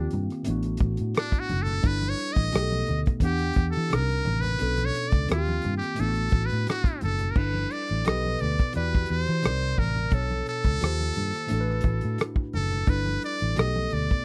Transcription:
Already playing: tine electric piano D#3 A#3 C4 F4 G4, muted trumpet D4
0.11 fingered electric bass G2, closed hi-hat, low conga
0.30 cross-stick, closed hi-hat
0.43 tine electric piano A2 A3 B3, closed hi-hat
0.47 fingered electric bass A1, tine electric piano D4 E4 F#4, muted conga
0.63 closed hi-hat, muted conga
0.77 kick, closed hi-hat
0.81 fingered electric bass A1
0.97 fingered electric bass A2, closed hi-hat
1.15 muted trumpet D4, cross-stick, closed hi-hat, muted conga
1.32 kick, closed hi-hat, muted conga
1.40 muted trumpet F#4
1.49 fingered electric bass F#1, closed hi-hat, high conga, low conga
1.63 muted trumpet A4, closed hi-hat
1.67 low conga
1.83 fingered electric bass G1, tine electric piano G3 D4 E4 A4 B4, kick, closed hi-hat
1.87 muted trumpet B4
2.01 closed hi-hat, muted conga, high conga
2.09 muted trumpet C#5
2.18 closed hi-hat
2.33 muted trumpet D#5, kick, closed hi-hat
2.37 fingered electric bass A1
2.52 fingered electric bass B1, tine electric piano B2 A3 B3 D#4 G4 G#4, cross-stick, closed hi-hat, high conga
2.62 tine electric piano A4
2.69 closed hi-hat, muted conga, high conga
2.86 fingered electric bass D2, closed hi-hat, low conga
3.06 kick, closed hi-hat
3.20 fingered electric bass E2, tine electric piano E3 B3 D4 F#5, kick, closed hi-hat, muted conga
3.25 tine electric piano G4, muted trumpet G4
3.38 closed hi-hat, muted conga
3.53 kick, closed hi-hat
3.57 fingered electric bass E2
3.71 muted trumpet A4, closed hi-hat
3.77 fingered electric bass E3
3.89 fingered electric bass C2, tine electric piano C3 C4 D4 D#4 A#4, cross-stick, closed hi-hat
3.95 muted trumpet A#4
4.09 closed hi-hat, muted conga
4.25 fingered electric bass A1, closed hi-hat, high conga, low conga
4.41 muted trumpet B4, closed hi-hat, low conga
4.58 fingered electric bass B1, tine electric piano B2 B3 C#4 D4 A4, closed hi-hat
4.77 closed hi-hat, muted conga, high conga
4.85 muted trumpet C#5
4.95 closed hi-hat
5.09 muted trumpet D5, kick, closed hi-hat
5.13 fingered electric bass C#2
5.28 fingered electric bass D#2, tine electric piano D#3 A#3 C4 F4 F#4, muted trumpet F4, cross-stick, closed hi-hat, high conga
5.38 tine electric piano G4
5.45 closed hi-hat, muted conga, high conga
5.62 fingered electric bass G2, closed hi-hat, low conga
5.77 muted trumpet G4
5.82 cross-stick, closed hi-hat
5.94 tine electric piano A2 A3 B3, closed hi-hat
5.99 fingered electric bass A1, tine electric piano D4 E4 F4, muted trumpet A4
6.08 tine electric piano F#4
6.14 closed hi-hat, muted conga
6.29 kick, closed hi-hat
6.33 fingered electric bass A1
6.46 muted trumpet B4, closed hi-hat
6.52 fingered electric bass A2
6.67 muted trumpet F#4, cross-stick, closed hi-hat, muted conga
6.84 kick, closed hi-hat, muted conga
7.01 fingered electric bass F#1, muted trumpet A4, closed hi-hat, high conga, low conga
7.19 closed hi-hat, low conga
7.31 muted trumpet A#4
7.35 fingered electric bass G1, tine electric piano G3 D4 E4 A4 B4, muted trumpet B4, kick, crash, muted conga
7.54 high conga
7.71 muted trumpet D5, closed hi-hat
7.87 fingered electric bass A1, closed hi-hat
8.04 fingered electric bass B1, tine electric piano B2 B3 D#4 G4 A4 B4, muted trumpet D#5, cross-stick, closed hi-hat, high conga
8.21 closed hi-hat, high conga
8.39 fingered electric bass D2, muted trumpet D5, closed hi-hat, low conga
8.58 kick, cross-stick, closed hi-hat
8.73 fingered electric bass E2, tine electric piano E3 E4 F#4 G4 D5, muted trumpet B4, closed hi-hat, muted conga
8.95 kick
9.06 closed hi-hat
9.10 fingered electric bass E2, muted trumpet C5
9.26 fingered electric bass E3, closed hi-hat
9.42 fingered electric bass C2, tine electric piano C3 C4 D#4 A#4 D5, cross-stick, closed hi-hat, muted conga
9.62 muted conga
9.77 fingered electric bass A1, muted trumpet A#4, kick, open hi-hat, high conga, low conga
9.94 closed hi-hat, low conga
10.10 fingered electric bass B1, tine electric piano B2 B3 D4 A4 C#5, muted trumpet A4, kick, closed hi-hat
10.29 closed hi-hat, high conga
10.47 muted trumpet A4, closed hi-hat
10.63 fingered electric bass C#2, kick, closed hi-hat
10.79 fingered electric bass D#2, tine electric piano D#3 A#3 F4 G4 C5, closed hi-hat, muted conga, high conga
10.84 cross-stick
11.01 high conga
11.14 fingered electric bass G2, closed hi-hat, low conga
11.34 cross-stick, closed hi-hat
11.47 tine electric piano A2 A3 D4, closed hi-hat
11.51 fingered electric bass A1, tine electric piano E4 F#4 A4
11.60 tine electric piano B4
11.69 cross-stick, muted conga
11.81 kick, closed hi-hat
11.85 fingered electric bass A1
12.01 fingered electric bass A2, closed hi-hat
12.18 cross-stick, closed hi-hat, muted conga
12.36 kick, muted conga
12.53 fingered electric bass F#1, muted trumpet A4, open hi-hat, high conga, low conga
12.70 closed hi-hat, low conga
12.86 fingered electric bass G1, tine electric piano G3 D4 E4 A4 B4, muted trumpet B4, kick, closed hi-hat
13.05 muted conga, high conga
13.22 muted trumpet D5, closed hi-hat
13.39 fingered electric bass A1, closed hi-hat
13.55 fingered electric bass B1, tine electric piano B2 A3 B3 D#4 G4 A4, muted trumpet D#5, closed hi-hat, high conga
13.59 cross-stick
13.73 closed hi-hat, muted conga, high conga
13.90 fingered electric bass D2, muted trumpet D5, closed hi-hat, low conga
14.10 kick, closed hi-hat

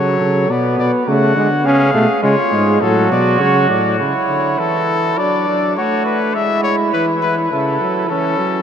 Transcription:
Already playing: tuba C#3, trombone F#3, flugelhorn A4, trumpet C#5
0.21 tuba C#3
0.49 tuba B2, trombone B3, flugelhorn B4, trumpet D5
0.79 tuba B2, trumpet D5
1.07 tuba C#3, trombone A3, flugelhorn F#4, trumpet F#5
1.36 tuba D3, trombone G#3
1.65 tuba C#3, trombone C#4, flugelhorn G#4, trumpet F5
1.94 tuba B2, trombone A3
2.22 tuba C#3, trombone G#3, flugelhorn F4, trumpet C#5
2.52 tuba G#2, trombone G#3
2.81 tuba A2, trombone F#3, flugelhorn F#4, trumpet A4
3.11 tuba B2, trumpet D5
3.40 tuba C#3, trombone F#3, trumpet C#5
3.70 tuba A2, trumpet D5
3.99 trombone C#3, flugelhorn E4, trumpet C#5
4.29 trombone D3
4.59 trombone E3, trumpet A4
5.18 trombone F#3, flugelhorn D4, trumpet D5
5.48 trombone F#3
5.77 trombone A3, flugelhorn F#4, trumpet C#5
6.06 trumpet B4
6.34 trombone G#3, flugelhorn E4, trumpet E5
6.63 trumpet C#5
6.92 trombone E3, trumpet B4
7.22 trumpet B4
7.51 trombone C#3, flugelhorn E4, trumpet A4
7.81 trombone F#3
8.09 trombone E3, flugelhorn C#4, trumpet A4
8.38 trombone F#3

